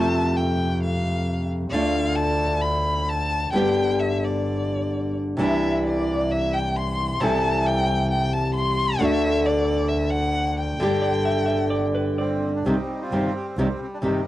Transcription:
Already playing: F2 C3 A3 C4 F4 A5
0.37 G5
0.83 F5
1.71 D2 D3 A3 D4 F5
1.75 F4
2.15 A5
2.62 B5
3.09 A5
3.53 G1 D3 G3 B3 G4 G5
3.99 E5
4.24 D5
5.37 C2 C3 E3 G3 D4 E4
5.41 E5
5.86 D5
6.31 E5
6.53 G5
6.76 C6
7.20 C2 C3 E3 G3 C4 E4 A5
7.24 A4
7.66 G5
8.11 G5
8.33 A5
8.54 C6
8.99 D2 D3 A3 D4 F#4 E5
9.46 D5
9.88 E5
10.10 F#5
10.57 G5
10.79 G1 D3 G3 G4
11.02 D5
11.25 E5
11.46 E5
11.70 D5
11.95 B4
12.18 G3 C4 D5
12.56 D4
12.65 C2 C3 D#3 G3 C4 G4
12.69 G3 C4 D#4
13.02 C4 F4
13.11 G1 C3 D#3 G3 C4 G4
13.37 G4
13.57 C2 C3 D#3 G3 C4 D#4 G4
13.82 C4
13.94 D4
14.02 G1 C3 D#3 G3 C4 D#4 G4

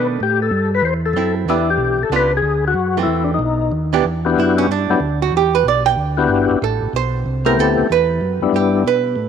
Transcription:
Already playing: B2 D#3 A3 D4
0.20 A2 G4
0.42 A4
0.51 G2
0.74 B4
0.82 E2 C5
1.06 A4
1.13 F#2 C4 E4
1.46 E2 E3 B3 D4 G4
1.50 E4
1.70 G4
1.77 B1
1.99 B1
2.03 A4
2.10 C#2 B3 D4 F4
2.16 B4
2.37 G#4
2.42 D2
2.68 F#4
2.74 F#2
2.97 E3 A3 C4
3.03 E4
3.07 E2
3.24 D4
3.34 D#4
3.39 B1
3.72 D#2
3.93 E3 B3 D4 G4
4.05 E2
4.25 B3 D4 E4 F#4 G4
4.37 F#2 E4
4.58 C#4
4.68 G2 D4
4.90 G2 F#3 B3 D4 E4 G4
5.00 D2
5.22 F#4
5.32 E2
5.37 G4
5.55 B4
5.65 B1 D5
5.86 G5
5.96 D2
6.17 B3 D4 E4 F#4 G4
6.29 G1
6.50 G1
6.62 A1 A4
6.82 A1
6.93 B1 C5
7.26 C2
7.45 A3 B3 C4 E4 G4 A#4
7.57 D2 A4
7.78 D2
7.90 E2 B4
8.21 F#2
8.41 F#2 G3 B3 D4 E4
8.52 G2 G4
8.84 B2 B4
9.16 A2

